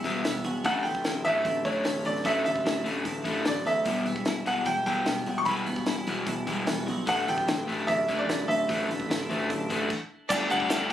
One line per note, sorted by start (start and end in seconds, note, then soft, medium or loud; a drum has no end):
0.00 0.64 G3 medium
0.00 0.23 B3 medium
0.00 1.05 E4 medium
0.00 0.42 E5 medium
0.04 0.24 E1 medium
0.04 0.23 E2 loud
0.04 0.24 B2 loud
0.04 0.24 E3 loud
0.04 kick medium
0.04 open hi-hat medium
0.24 0.44 E1 medium
0.24 0.43 E2 medium
0.24 0.43 B2 medium
0.24 0.64 B3 medium
0.24 snare medium
0.24 open hi-hat medium
0.44 0.65 E1 medium
0.44 0.63 E2 medium
0.44 0.63 B2 medium
0.44 0.65 F#4 medium
0.44 open hi-hat soft
0.64 0.84 A1 loud
0.64 0.83 A2 medium
0.64 0.84 D3 medium
0.64 1.64 E3 medium
0.64 0.84 A3 medium
0.64 0.86 F#5 medium
0.64 kick loud
0.64 open hi-hat medium
0.83 1.05 A1 medium
0.83 1.03 A2 medium
0.83 1.03 D3 medium
0.83 1.23 A3 medium
0.83 1.21 G5 medium
0.83 open hi-hat soft
0.95 kick medium
1.04 1.25 A1 medium
1.04 1.23 A2 medium
1.04 1.23 D3 medium
1.04 1.43 D4 medium
1.04 snare loud
1.04 open hi-hat medium
1.25 1.44 A1 medium
1.25 1.44 A2 medium
1.25 1.45 D3 medium
1.25 1.83 A3 medium
1.25 1.45 A3 loud
1.25 1.66 E5 loud
1.25 open hi-hat soft
1.44 1.64 A1 medium
1.44 1.64 A2 medium
1.44 1.64 D3 medium
1.44 2.45 D4 medium
1.44 kick loud
1.44 open hi-hat medium
1.65 1.85 A1 medium
1.65 1.85 A2 loud
1.65 1.85 D3 medium
1.65 2.24 E3 medium
1.65 1.85 A3 loud
1.65 2.07 C#5 medium
1.65 kick medium
1.65 open hi-hat soft
1.84 2.05 A1 medium
1.84 2.04 A2 medium
1.84 2.04 D3 medium
1.84 2.43 A3 medium
1.84 snare loud
1.84 open hi-hat medium
2.05 2.25 A1 medium
2.05 2.23 A2 medium
2.05 2.24 D3 medium
2.05 3.06 A4 medium
2.05 2.26 D5 medium
2.05 open hi-hat medium
2.16 snare soft
2.24 2.45 A1 loud
2.24 2.44 A2 medium
2.24 2.44 D3 medium
2.24 3.25 E3 medium
2.24 2.44 A3 loud
2.24 2.43 E5 medium
2.24 kick loud
2.24 open hi-hat medium
2.44 2.65 A1 medium
2.44 2.63 A2 medium
2.44 2.64 D3 medium
2.44 2.84 A3 medium
2.44 3.42 E5 medium
2.44 open hi-hat medium
2.56 kick medium
2.64 2.85 A1 medium
2.64 2.83 A2 medium
2.64 2.84 D3 medium
2.64 3.05 D4 medium
2.64 snare loud
2.64 open hi-hat medium
2.84 3.05 A1 medium
2.84 3.04 A2 medium
2.84 3.04 D3 medium
2.84 3.04 A3 medium
2.84 3.44 A3 medium
2.84 open hi-hat medium
3.05 3.25 A1 medium
3.05 3.23 A2 medium
3.05 3.23 D3 medium
3.05 3.86 D4 medium
3.05 kick loud
3.05 open hi-hat medium
3.24 3.46 A1 medium
3.24 3.44 A2 medium
3.24 3.44 D3 loud
3.24 3.85 E3 medium
3.24 3.45 A3 loud
3.24 kick medium
3.24 open hi-hat medium
3.45 3.65 A1 medium
3.45 3.64 A2 medium
3.45 3.64 D3 medium
3.45 3.86 A3 medium
3.45 3.68 D5 medium
3.45 snare loud
3.45 open hi-hat medium
3.65 3.86 D2 medium
3.65 3.84 A2 medium
3.65 3.84 D3 medium
3.65 3.86 A4 medium
3.65 4.23 E5 medium
3.65 snare soft
3.65 open hi-hat soft
3.85 4.05 E1 loud
3.85 4.05 E2 medium
3.85 4.05 B2 medium
3.85 4.05 E3 medium
3.85 4.85 G3 medium
3.85 kick loud
3.85 open hi-hat medium
4.06 4.25 E1 medium
4.06 4.25 E2 medium
4.06 4.25 B2 medium
4.06 4.46 B3 medium
4.06 open hi-hat soft
4.16 kick medium
4.25 4.45 E1 medium
4.25 4.44 E2 medium
4.25 4.45 B2 medium
4.25 4.66 E4 medium
4.25 snare loud
4.25 open hi-hat medium
4.45 4.66 E1 medium
4.45 4.65 E2 medium
4.45 4.65 B2 medium
4.45 4.65 E3 loud
4.45 5.05 B3 medium
4.45 4.68 F#5 medium
4.45 open hi-hat soft
4.65 4.85 E1 medium
4.65 4.85 E2 medium
4.65 4.85 B2 medium
4.65 5.86 E4 medium
4.65 4.85 G5 loud
4.65 kick loud
4.65 open hi-hat medium
4.86 5.06 E1 medium
4.86 5.06 E2 medium
4.86 5.06 B2 loud
4.86 5.06 E3 loud
4.86 5.44 G3 medium
4.86 5.42 G5 medium
4.86 kick medium
4.86 open hi-hat soft
5.06 5.27 E1 medium
5.06 5.26 E2 medium
5.06 5.26 B2 medium
5.06 5.65 B3 medium
5.06 snare loud
5.06 open hi-hat medium
5.26 5.45 E1 medium
5.26 5.45 E2 medium
5.26 5.46 B2 medium
5.26 6.27 F#4 medium
5.26 open hi-hat soft
5.38 5.46 C#6 medium
5.45 5.66 E1 medium
5.45 5.66 E2 medium
5.45 5.67 B2 medium
5.45 5.67 E3 medium
5.45 6.46 G3 medium
5.45 6.23 B5 medium
5.45 kick loud
5.45 open hi-hat medium
5.66 5.86 E1 medium
5.66 5.86 E2 medium
5.66 5.86 B2 medium
5.66 6.05 B3 medium
5.66 open hi-hat medium
5.76 kick medium
5.86 6.07 E1 medium
5.86 6.06 E2 medium
5.86 6.06 B2 medium
5.86 6.26 E4 medium
5.86 snare loud
5.86 open hi-hat medium
6.06 6.26 E1 medium
6.06 6.27 E2 medium
6.06 6.27 B2 loud
6.06 6.27 E3 loud
6.06 6.66 B3 medium
6.06 open hi-hat medium
6.26 6.47 E1 medium
6.26 6.46 E2 medium
6.26 6.46 B2 medium
6.26 7.46 E4 medium
6.26 kick loud
6.26 open hi-hat medium
6.47 6.67 E1 medium
6.47 6.65 E2 loud
6.47 6.66 B2 loud
6.47 6.67 E3 loud
6.47 7.06 G3 medium
6.47 kick medium
6.47 open hi-hat medium
6.67 6.88 E1 medium
6.67 6.85 E2 medium
6.67 6.86 B2 medium
6.67 7.08 B3 medium
6.67 snare loud
6.67 open hi-hat medium
6.86 7.07 B1 medium
6.86 7.06 E2 medium
6.86 7.06 B2 medium
6.86 7.07 F#4 medium
6.86 open hi-hat soft
7.06 7.27 A1 medium
7.06 7.26 A2 medium
7.06 7.26 D3 medium
7.06 8.07 E3 medium
7.06 7.27 A3 loud
7.06 7.29 F#5 loud
7.06 kick loud
7.06 open hi-hat medium
7.26 7.48 A1 medium
7.26 7.46 A2 medium
7.26 7.46 D3 medium
7.26 7.66 A3 medium
7.26 7.66 G5 medium
7.26 open hi-hat medium
7.38 kick medium
7.47 7.68 A1 medium
7.47 7.66 A2 medium
7.47 7.67 D3 medium
7.47 7.86 D4 medium
7.47 snare loud
7.47 open hi-hat medium
7.66 7.88 A1 medium
7.66 7.87 A2 medium
7.66 7.87 D3 medium
7.66 8.26 A3 medium
7.66 7.87 A3 loud
7.66 open hi-hat soft
7.87 8.08 A1 medium
7.87 8.07 A2 medium
7.87 8.07 D3 medium
7.87 8.89 D4 medium
7.87 8.19 E5 medium
7.87 kick loud
7.87 open hi-hat medium
8.08 8.27 A1 medium
8.08 8.28 A2 medium
8.08 8.28 D3 loud
8.08 8.67 E3 medium
8.08 8.28 A3 loud
8.08 kick medium
8.08 open hi-hat soft
8.19 8.47 D5 medium
8.28 8.47 A1 medium
8.28 8.47 A2 medium
8.28 8.48 D3 medium
8.28 8.87 A3 medium
8.28 snare loud
8.28 open hi-hat medium
8.48 8.68 A1 medium
8.48 8.67 A2 medium
8.48 8.67 D3 medium
8.48 9.49 A4 medium
8.48 9.85 E5 medium
8.48 open hi-hat soft
8.68 8.88 A1 medium
8.68 8.88 A2 medium
8.68 8.88 D3 loud
8.68 9.68 E3 medium
8.68 8.88 A3 medium
8.68 kick loud
8.68 open hi-hat medium
8.88 9.08 A1 medium
8.88 9.07 A2 medium
8.88 9.07 D3 medium
8.88 9.28 A3 medium
8.88 open hi-hat medium
9.00 kick medium
9.09 9.29 A1 medium
9.09 9.27 A2 medium
9.09 9.27 D3 medium
9.09 9.48 D4 medium
9.09 snare loud
9.09 open hi-hat medium
9.29 9.49 A1 medium
9.29 9.49 A2 medium
9.29 9.49 D3 medium
9.29 9.90 A3 medium
9.29 9.49 A3 medium
9.29 open hi-hat soft
9.49 9.70 A1 medium
9.49 9.68 A2 medium
9.49 9.68 D3 medium
9.49 9.90 D4 medium
9.49 kick medium
9.49 open hi-hat medium
9.70 9.90 A1 medium
9.70 9.89 A2 medium
9.70 9.89 D3 medium
9.70 9.90 E3 medium
9.70 9.89 A3 loud
9.70 kick medium
9.70 open hi-hat medium
9.90 kick medium
9.90 crash medium
10.29 10.43 G1 loud
10.29 10.49 G3 medium
10.29 10.49 A3 loud
10.29 10.49 D4 loud
10.29 10.50 D4 loud
10.29 10.93 G4 medium
10.29 10.49 G4 loud
10.29 10.50 G4 loud
10.29 10.93 A4 medium
10.29 10.93 D5 medium
10.29 10.50 D5 loud
10.29 10.93 A5 medium
10.29 kick loud
10.29 crash loud
10.29 crash medium
10.29 shaker loud
10.49 10.63 G1 medium
10.49 10.69 G3 medium
10.49 10.68 A3 medium
10.49 10.69 A3 medium
10.49 10.69 D4 medium
10.49 10.70 D4 medium
10.49 10.69 G4 medium
10.49 10.70 G4 medium
10.49 10.92 F#5 loud
10.49 crash medium
10.49 shaker medium
10.60 kick medium
10.69 10.93 G1 medium
10.69 10.89 G3 loud
10.69 10.89 A3 loud
10.69 10.90 A3 loud
10.69 10.89 D4 loud
10.69 10.90 D4 medium
10.69 10.88 G4 medium
10.69 10.90 G4 loud
10.69 snare loud
10.69 crash medium
10.69 shaker medium
10.89 10.93 A3 medium
10.89 10.93 D4 medium
10.89 10.93 G4 loud